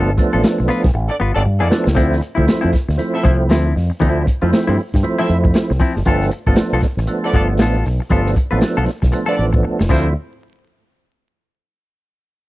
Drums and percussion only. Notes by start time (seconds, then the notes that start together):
0.18 kick, closed hi-hat
0.44 snare, closed hi-hat
0.68 snare, closed hi-hat
0.84 kick, snare
1.72 snare
1.87 snare
1.97 kick, closed hi-hat
2.13 snare
2.22 closed hi-hat
2.38 kick
2.48 snare, closed hi-hat
2.73 kick, snare, closed hi-hat
2.89 snare
2.99 closed hi-hat
3.25 kick, closed hi-hat
3.50 snare, closed hi-hat
3.77 snare, open hi-hat
4.01 kick, closed hi-hat
4.27 kick, closed hi-hat
4.53 snare, closed hi-hat
4.77 open hi-hat
4.94 kick, snare
5.04 closed hi-hat
5.30 closed hi-hat
5.45 kick
5.54 snare, closed hi-hat
5.71 snare
5.80 kick, open hi-hat
5.96 snare
6.05 kick, closed hi-hat
6.21 snare
6.31 closed hi-hat
6.47 kick
6.56 snare, closed hi-hat
6.81 kick, snare, closed hi-hat
6.98 snare
7.07 closed hi-hat
7.33 kick, closed hi-hat
7.58 snare, closed hi-hat
7.85 snare, open hi-hat
8.10 kick, closed hi-hat
8.26 snare
8.36 kick, closed hi-hat
8.61 snare, closed hi-hat
8.86 snare, closed hi-hat
9.03 kick, snare
9.12 closed hi-hat
9.38 closed hi-hat
9.54 kick
9.80 snare
9.89 kick, crash